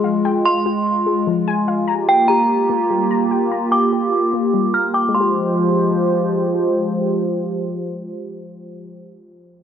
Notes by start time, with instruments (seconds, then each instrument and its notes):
Already playing: synth pluck F3 G#3 G#4 G5, analog synth pad G#3 F4
0.04 synth pluck F5
0.25 synth pluck G5
0.45 synth pluck F5, synth bell C6
0.66 synth pluck F4
1.06 synth pluck G#3
1.27 synth pluck F3
1.48 synth pluck G#5
1.68 synth pluck F5
1.88 analog synth pad A#3 F4 G4, synth pluck A#5
2.09 synth bell G5, synth pluck G5
2.28 synth pluck G4, synth bell A#5
2.69 synth pluck A#3
2.90 synth pluck G3
3.11 synth pluck A#5
3.31 synth pluck G5
3.51 synth pluck A#5
3.71 synth pluck G5, synth bell D6
3.93 synth pluck G4
4.33 synth pluck A#3
4.54 synth pluck G3
4.74 synth pluck A#5, synth bell F6
4.94 synth pluck G5, synth bell D6
5.09 synth pluck G#3
5.14 analog synth pad F3 G#3 F4 G4 C5, synth pluck F4, synth bell C6
5.21 synth pluck G4